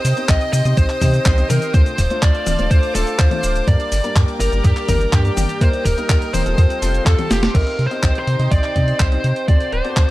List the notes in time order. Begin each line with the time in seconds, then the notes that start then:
Already playing: C5 D#5 G5 D#6
0.05 C3, open hi-hat, cabasa
0.17 C4 D#4 G4 D#5, closed hi-hat, cabasa
0.29 C2 D#5, kick, clap, closed hi-hat, cabasa
0.41 closed hi-hat, cabasa
0.53 C3 D#5, open hi-hat, cabasa
0.65 C3 C4 D#4 G4 D#5, closed hi-hat, cabasa
0.77 C2 C5, kick, closed hi-hat, cabasa
0.89 clap, closed hi-hat, cabasa
1.01 C3 C4 D#4 G4 D#5, kick, open hi-hat, high tom, cabasa
1.14 closed hi-hat, cabasa
1.26 C2, kick, clap, closed hi-hat, high tom, cabasa
1.38 C4 D#4 G4 D#5, closed hi-hat, cabasa
1.50 C3 A#4, open hi-hat, high tom, cabasa
1.62 closed hi-hat, cabasa
1.74 D2 A3 D4 F4 C5 F5 A5 D6, kick, closed hi-hat, cabasa
1.86 closed hi-hat, cabasa
1.98 D1, kick, open hi-hat, cabasa
2.10 A3 D4 F4 C5, closed hi-hat, cabasa
2.22 D2 D5, kick, clap, closed hi-hat, cabasa
2.35 closed hi-hat, cabasa
2.47 D1, open hi-hat, high tom, cabasa
2.59 D1 A3 D4 F4 C5, closed hi-hat, cabasa
2.71 D2 C5, kick, closed hi-hat, cabasa
2.83 closed hi-hat, cabasa
2.95 D1 A3 D4 F4 A4 C5, open hi-hat, cabasa
3.07 closed hi-hat, cabasa
3.19 D2 C5, kick, clap, closed hi-hat, cabasa
3.31 A3 D4 F4 C5, closed hi-hat, high tom, cabasa
3.43 D1, open hi-hat, cabasa
3.56 closed hi-hat, cabasa
3.68 G2 G3 A#3 D4 A#4 D5 G5, kick, closed hi-hat, cabasa
3.80 closed hi-hat, cabasa
3.92 G1, open hi-hat, cabasa
4.04 G3 A#3 D4 A#4, closed hi-hat, cabasa
4.16 G2, kick, clap, closed hi-hat, cabasa
4.28 closed hi-hat, cabasa
4.40 G1 A#4, open hi-hat, cabasa
4.52 G1 G3 A#3 D4 A#4, closed hi-hat, cabasa
4.64 G2 G4, kick, closed hi-hat, cabasa
4.77 clap, closed hi-hat, cabasa
4.89 G1 G3 A#3 D4 A#4, kick, open hi-hat, high tom, cabasa
5.01 closed hi-hat, cabasa
5.13 G2 G4, kick, clap, closed hi-hat, high tom, cabasa
5.25 G3 A#3 D4 A#4, closed hi-hat, cabasa
5.37 G1, open hi-hat, high tom, cabasa
5.49 closed hi-hat, cabasa
5.61 D#2 G3 A#3 D#4 A#4 C5 D#5 D#6, kick, closed hi-hat, cabasa
5.73 closed hi-hat, cabasa
5.85 D#1 A#4, kick, open hi-hat, cabasa
5.98 G3 A#3 D#4 A#4, closed hi-hat, cabasa
6.10 D#2 A#4, kick, clap, closed hi-hat, cabasa
6.22 closed hi-hat, cabasa
6.34 D#1 C5, open hi-hat, high tom, cabasa
6.46 D#1 G3 C4 F4 A4, closed hi-hat, cabasa
6.58 F2 A4 F5 C6, kick, closed hi-hat, cabasa
6.70 closed hi-hat, cabasa
6.82 F1 G3 C4 F4 A4, open hi-hat, cabasa
6.94 closed hi-hat, cabasa
7.06 F2 A4, kick, clap, closed hi-hat, cabasa
7.18 G3 C4 F4 A4, closed hi-hat, high tom, cabasa
7.30 F1 G4, snare, open hi-hat, cabasa
7.43 snare, closed hi-hat, cabasa
7.55 C2 C4 D#4 G4 A#4 C5 D#5 G5 C6, kick, closed hi-hat, crash
7.67 closed hi-hat
7.79 C3, closed hi-hat
7.87 C5
7.91 C4 D#4 G4 D#5, closed hi-hat
8.03 C2, kick, clap, closed hi-hat
8.15 C5, closed hi-hat
8.27 C3, closed hi-hat
8.39 C3 C4 D#4 G4 D#5, closed hi-hat
8.51 C2 D5, kick, closed hi-hat
8.64 clap, closed hi-hat
8.76 C3 C4 D#4 G4 D#5, kick, closed hi-hat
8.88 closed hi-hat
9.00 C2 C5, kick, clap, closed hi-hat
9.12 C4 D#4 G4 D#5, closed hi-hat
9.24 C3, closed hi-hat
9.36 closed hi-hat
9.48 D2 C4 F#4 A4 D5 F#5 A5 D6, kick, closed hi-hat
9.60 closed hi-hat
9.72 D1 C5, closed hi-hat
9.84 C4 F#4 A4 D5, closed hi-hat
9.97 D2, kick, clap, closed hi-hat